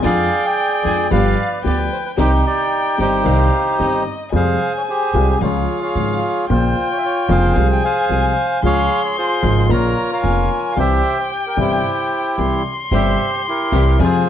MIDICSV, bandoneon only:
0, 0, Header, 1, 2, 480
1, 0, Start_track
1, 0, Tempo, 536673
1, 36, Time_signature, 4, 2, 24, 8
1, 12784, End_track
2, 0, Start_track
2, 0, Title_t, "Bandoneon"
2, 0, Program_c, 0, 23
2, 36, Note_on_c, 0, 74, 64
2, 40, Note_on_c, 0, 68, 76
2, 51, Note_on_c, 0, 77, 100
2, 398, Note_off_c, 0, 74, 0
2, 411, Note_on_c, 0, 74, 64
2, 412, Note_on_c, 0, 79, 89
2, 413, Note_off_c, 0, 77, 0
2, 738, Note_off_c, 0, 79, 0
2, 767, Note_on_c, 0, 80, 101
2, 872, Note_off_c, 0, 80, 0
2, 959, Note_off_c, 0, 68, 0
2, 965, Note_off_c, 0, 74, 0
2, 999, Note_on_c, 0, 74, 69
2, 1001, Note_on_c, 0, 71, 69
2, 1008, Note_on_c, 0, 77, 91
2, 1335, Note_off_c, 0, 77, 0
2, 1355, Note_off_c, 0, 74, 0
2, 1368, Note_on_c, 0, 74, 74
2, 1419, Note_off_c, 0, 74, 0
2, 1489, Note_on_c, 0, 74, 82
2, 1593, Note_off_c, 0, 74, 0
2, 1721, Note_on_c, 0, 72, 75
2, 1773, Note_off_c, 0, 72, 0
2, 1826, Note_off_c, 0, 71, 0
2, 1839, Note_on_c, 0, 71, 74
2, 1891, Note_off_c, 0, 71, 0
2, 1959, Note_on_c, 0, 63, 72
2, 1960, Note_on_c, 0, 67, 62
2, 1971, Note_on_c, 0, 72, 96
2, 2074, Note_off_c, 0, 72, 0
2, 2194, Note_off_c, 0, 67, 0
2, 2207, Note_on_c, 0, 67, 61
2, 2208, Note_on_c, 0, 74, 87
2, 2647, Note_off_c, 0, 74, 0
2, 2671, Note_off_c, 0, 63, 0
2, 2673, Note_off_c, 0, 67, 0
2, 2684, Note_on_c, 0, 63, 55
2, 2686, Note_on_c, 0, 67, 59
2, 2695, Note_on_c, 0, 72, 89
2, 3607, Note_off_c, 0, 63, 0
2, 3608, Note_off_c, 0, 67, 0
2, 3612, Note_off_c, 0, 72, 0
2, 3895, Note_on_c, 0, 68, 66
2, 3895, Note_on_c, 0, 72, 68
2, 3900, Note_on_c, 0, 77, 89
2, 4226, Note_off_c, 0, 77, 0
2, 4267, Note_on_c, 0, 73, 61
2, 4315, Note_off_c, 0, 73, 0
2, 4361, Note_off_c, 0, 68, 0
2, 4368, Note_off_c, 0, 72, 0
2, 4375, Note_on_c, 0, 68, 56
2, 4381, Note_on_c, 0, 72, 76
2, 4382, Note_on_c, 0, 67, 62
2, 4708, Note_off_c, 0, 72, 0
2, 4738, Note_on_c, 0, 72, 75
2, 4789, Note_off_c, 0, 72, 0
2, 4816, Note_off_c, 0, 68, 0
2, 4820, Note_off_c, 0, 67, 0
2, 4857, Note_on_c, 0, 68, 55
2, 4858, Note_on_c, 0, 73, 65
2, 4859, Note_on_c, 0, 65, 61
2, 5187, Note_off_c, 0, 73, 0
2, 5201, Note_off_c, 0, 68, 0
2, 5208, Note_on_c, 0, 77, 74
2, 5213, Note_on_c, 0, 73, 58
2, 5214, Note_on_c, 0, 68, 56
2, 5541, Note_off_c, 0, 77, 0
2, 5773, Note_off_c, 0, 73, 0
2, 5774, Note_off_c, 0, 68, 0
2, 5777, Note_off_c, 0, 65, 0
2, 5818, Note_on_c, 0, 65, 56
2, 5844, Note_on_c, 0, 72, 70
2, 6160, Note_off_c, 0, 72, 0
2, 6193, Note_on_c, 0, 73, 74
2, 6240, Note_on_c, 0, 76, 58
2, 6242, Note_off_c, 0, 73, 0
2, 6296, Note_off_c, 0, 76, 0
2, 6310, Note_on_c, 0, 73, 80
2, 6532, Note_on_c, 0, 72, 63
2, 6534, Note_on_c, 0, 68, 67
2, 6534, Note_on_c, 0, 77, 94
2, 6541, Note_off_c, 0, 73, 0
2, 6735, Note_off_c, 0, 65, 0
2, 6864, Note_off_c, 0, 77, 0
2, 6902, Note_on_c, 0, 79, 83
2, 7005, Note_off_c, 0, 79, 0
2, 7006, Note_off_c, 0, 72, 0
2, 7011, Note_on_c, 0, 80, 92
2, 7019, Note_on_c, 0, 72, 64
2, 7019, Note_on_c, 0, 77, 73
2, 7453, Note_off_c, 0, 68, 0
2, 7453, Note_off_c, 0, 80, 0
2, 7695, Note_off_c, 0, 72, 0
2, 7695, Note_off_c, 0, 77, 0
2, 7740, Note_on_c, 0, 77, 109
2, 7742, Note_on_c, 0, 73, 70
2, 7747, Note_on_c, 0, 68, 69
2, 8067, Note_off_c, 0, 77, 0
2, 8076, Note_off_c, 0, 73, 0
2, 8089, Note_on_c, 0, 73, 78
2, 8198, Note_off_c, 0, 68, 0
2, 8198, Note_off_c, 0, 73, 0
2, 8210, Note_on_c, 0, 72, 85
2, 8211, Note_on_c, 0, 68, 55
2, 8216, Note_on_c, 0, 65, 65
2, 8540, Note_off_c, 0, 72, 0
2, 8572, Note_on_c, 0, 72, 75
2, 8624, Note_off_c, 0, 72, 0
2, 8652, Note_off_c, 0, 68, 0
2, 8654, Note_off_c, 0, 65, 0
2, 8694, Note_on_c, 0, 65, 60
2, 8696, Note_on_c, 0, 70, 60
2, 8701, Note_on_c, 0, 73, 78
2, 9040, Note_off_c, 0, 70, 0
2, 9040, Note_off_c, 0, 73, 0
2, 9054, Note_on_c, 0, 70, 59
2, 9054, Note_on_c, 0, 73, 56
2, 9067, Note_on_c, 0, 77, 72
2, 9389, Note_off_c, 0, 77, 0
2, 9587, Note_on_c, 0, 77, 78
2, 9609, Note_off_c, 0, 65, 0
2, 9610, Note_off_c, 0, 70, 0
2, 9610, Note_off_c, 0, 73, 0
2, 9644, Note_off_c, 0, 77, 0
2, 9649, Note_on_c, 0, 67, 71
2, 9651, Note_on_c, 0, 72, 72
2, 9657, Note_on_c, 0, 76, 102
2, 10001, Note_off_c, 0, 72, 0
2, 10015, Note_on_c, 0, 72, 69
2, 10018, Note_off_c, 0, 76, 0
2, 10119, Note_off_c, 0, 72, 0
2, 10258, Note_on_c, 0, 70, 65
2, 10360, Note_off_c, 0, 70, 0
2, 10366, Note_off_c, 0, 67, 0
2, 10379, Note_on_c, 0, 72, 78
2, 10380, Note_on_c, 0, 64, 56
2, 10380, Note_on_c, 0, 67, 60
2, 11053, Note_off_c, 0, 72, 0
2, 11293, Note_off_c, 0, 64, 0
2, 11293, Note_off_c, 0, 67, 0
2, 11566, Note_on_c, 0, 72, 65
2, 11572, Note_on_c, 0, 76, 84
2, 11573, Note_on_c, 0, 67, 62
2, 11900, Note_off_c, 0, 76, 0
2, 11943, Note_off_c, 0, 72, 0
2, 11956, Note_on_c, 0, 72, 70
2, 12002, Note_off_c, 0, 72, 0
2, 12041, Note_off_c, 0, 67, 0
2, 12055, Note_on_c, 0, 67, 57
2, 12059, Note_on_c, 0, 64, 59
2, 12073, Note_on_c, 0, 70, 76
2, 12391, Note_off_c, 0, 70, 0
2, 12435, Note_on_c, 0, 70, 77
2, 12492, Note_off_c, 0, 67, 0
2, 12495, Note_off_c, 0, 64, 0
2, 12539, Note_off_c, 0, 70, 0
2, 12552, Note_on_c, 0, 65, 67
2, 12552, Note_on_c, 0, 68, 59
2, 12567, Note_on_c, 0, 72, 84
2, 12784, Note_off_c, 0, 65, 0
2, 12784, Note_off_c, 0, 68, 0
2, 12784, Note_off_c, 0, 72, 0
2, 12784, End_track
0, 0, End_of_file